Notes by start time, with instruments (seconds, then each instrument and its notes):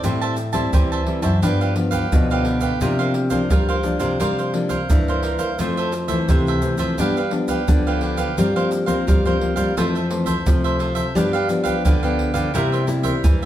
0.04 nylon-string guitar A2 G3 C4 E4, cavaquinho G4 C5 E5 A5, pandeiro, shaker, surdo
0.21 cavaquinho C5 E5 A5, pandeiro, shaker
0.37 muted cavaquinho stroke, pandeiro, shaker
0.53 nylon-string guitar G3 C4 E4, cavaquinho C5 E5 A5, pandeiro, shaker, surdo
0.73 nylon-string guitar E3, cavaquinho G4 C5 E5 A5, pandeiro, shaker, surdo
0.92 cavaquinho C5 E5 A5, pandeiro, shaker
1.07 nylon-string guitar G3 C4 E4, pandeiro
1.22 nylon-string guitar F#2, cavaquinho C5 E5 A5, pandeiro, shaker, surdo
1.42 nylon-string guitar G2 F3 B3 D4, cavaquinho D4 G4 B4 F5, pandeiro, shaker, surdo
1.61 cavaquinho G4 B4 F5, pandeiro, shaker
1.75 nylon-string guitar F3 B3 D4, muted cavaquinho stroke, pandeiro
1.91 cavaquinho G4 B4 F5, pandeiro, shaker, surdo
2.12 nylon-string guitar B2 D3 F3 B3 D4, pandeiro, shaker, surdo
2.30 cavaquinho G4 B4 F5, pandeiro, shaker
2.45 cavaquinho D4 G4 B4 F5, pandeiro
2.61 cavaquinho G4 B4 F5, pandeiro, shaker, surdo
2.81 nylon-string guitar C3 F3 A#3 D4, cavaquinho F4 A#4 C5 F5, pandeiro, shaker, surdo
2.99 cavaquinho A#4 C5 F5, pandeiro, shaker
3.14 muted cavaquinho stroke, pandeiro
3.30 nylon-string guitar F3 A#3 D4, cavaquinho A#4 C5 F5, pandeiro, shaker, surdo
3.50 nylon-string guitar G2 G3, cavaquinho F4 A#4 C5 F5, pandeiro, shaker, surdo
3.69 cavaquinho A#4 C5 F5, pandeiro, shaker
3.83 nylon-string guitar F3 A#3 D4, pandeiro, shaker, surdo
3.99 nylon-string guitar C3, cavaquinho A#4 C5 F5, pandeiro, shaker, surdo
4.20 nylon-string guitar C3 G3, cavaquinho F4 A#4 C5 F5, pandeiro, shaker, surdo
4.38 cavaquinho A#4 C5 F5, pandeiro, shaker
4.54 nylon-string guitar F3 A#3 D4, muted cavaquinho stroke, pandeiro
4.69 cavaquinho A#4 C5 F5, pandeiro, shaker, surdo
4.90 nylon-string guitar G2 E3 A#3 D4, pandeiro, shaker, surdo
5.08 cavaquinho A#4 C5 F5, pandeiro, shaker
5.23 cavaquinho F4 A#4 C5 F5, pandeiro
5.39 cavaquinho A#4 C5 F5, pandeiro, shaker, surdo
5.59 nylon-string guitar F2 F3 A3 C4, cavaquinho F4 A4 C5 E5, pandeiro, shaker, surdo
5.77 cavaquinho A4 C5 E5, pandeiro, shaker
5.92 muted cavaquinho stroke, pandeiro, shaker
6.08 nylon-string guitar E3 A3 C4, cavaquinho A4 C5 E5, pandeiro, shaker, surdo
6.29 nylon-string guitar C3, cavaquinho F4 A4 C5 E5, pandeiro, shaker, surdo
6.47 cavaquinho A4 C5 E5, pandeiro, shaker
6.62 nylon-string guitar E3 A3 C4, pandeiro, shaker
6.78 nylon-string guitar F3, cavaquinho A4 C5 E5, pandeiro, shaker, surdo
6.98 nylon-string guitar G2 F3 G3 B3 D4, cavaquinho D4 G4 B4 F5, pandeiro, shaker, surdo
7.17 cavaquinho G4 B4 F5, pandeiro, shaker
7.31 nylon-string guitar F3 B3 D4, muted cavaquinho stroke, pandeiro
7.48 cavaquinho G4 B4 F5, pandeiro, shaker, surdo
7.68 nylon-string guitar D3 F3 B3 D4, pandeiro, shaker, surdo
7.87 cavaquinho G4 B4 F5, pandeiro, shaker
8.01 cavaquinho D4 G4 B4 F5, pandeiro
8.17 cavaquinho G4 B4 F5, pandeiro, shaker, surdo
8.37 nylon-string guitar G2 F3 G3 A#3 C4, cavaquinho F4 A#4 C5 F5, pandeiro, shaker, surdo
8.56 nylon-string guitar F3 A#3 C4, cavaquinho A#4 C5 F5, pandeiro, shaker
8.71 muted cavaquinho stroke, pandeiro, shaker
8.86 nylon-string guitar F3 A#3 C4, cavaquinho A#4 C5 F5, pandeiro, shaker, surdo
9.07 nylon-string guitar G2 G3, cavaquinho F4 A#4 C5 F5, pandeiro, shaker, surdo
9.25 nylon-string guitar F3 A#3 C4, cavaquinho A#4 C5 F5, pandeiro, shaker
9.41 nylon-string guitar F3 A#3 C4, pandeiro, surdo
9.56 nylon-string guitar G3, cavaquinho A#4 C5 F5, pandeiro, shaker, surdo
9.77 nylon-string guitar F2 E3 F3 A3 C4, cavaquinho F4 A4 C5 E5, pandeiro, shaker, surdo
9.95 cavaquinho A4 C5 E5, pandeiro, shaker
10.10 nylon-string guitar E3 A3 C4, muted cavaquinho stroke, pandeiro
10.26 cavaquinho A4 C5 E5, pandeiro, shaker, surdo
10.46 nylon-string guitar C3 F3 A3 C4, pandeiro, shaker, surdo
10.64 cavaquinho A4 C5 E5, pandeiro, shaker
10.79 cavaquinho F4 A4 C5 E5, pandeiro
10.95 cavaquinho A4 C5 E5, pandeiro, shaker, surdo
11.15 nylon-string guitar G2 F3 G3 B3 D4, cavaquinho D4 G4 B4 F5, pandeiro, shaker, surdo
11.33 cavaquinho G4 B4 F5, pandeiro, shaker
11.49 nylon-string guitar F3 B3 D4, muted cavaquinho stroke, pandeiro, shaker
11.64 cavaquinho G4 B4 F5, pandeiro, shaker, surdo
11.85 nylon-string guitar D3, cavaquinho D4 G4 B4 F5, pandeiro, shaker, surdo
12.03 nylon-string guitar F3 B3 D4, cavaquinho G4 B4 F5, pandeiro, shaker
12.19 pandeiro, surdo
12.34 nylon-string guitar D3, cavaquinho G4 B4 F5, pandeiro, shaker, surdo
12.54 nylon-string guitar C3 G3 A#3 E4, cavaquinho E4 A#4 C5 E5, pandeiro, shaker, surdo
12.72 cavaquinho A#4 C5 E5, pandeiro, shaker
12.87 nylon-string guitar G3 A#3 E4, muted cavaquinho stroke, pandeiro, shaker
13.03 cavaquinho A#4 C5 E5, pandeiro, shaker, surdo
13.24 nylon-string guitar G2 E3, pandeiro, shaker, surdo
13.42 pandeiro, shaker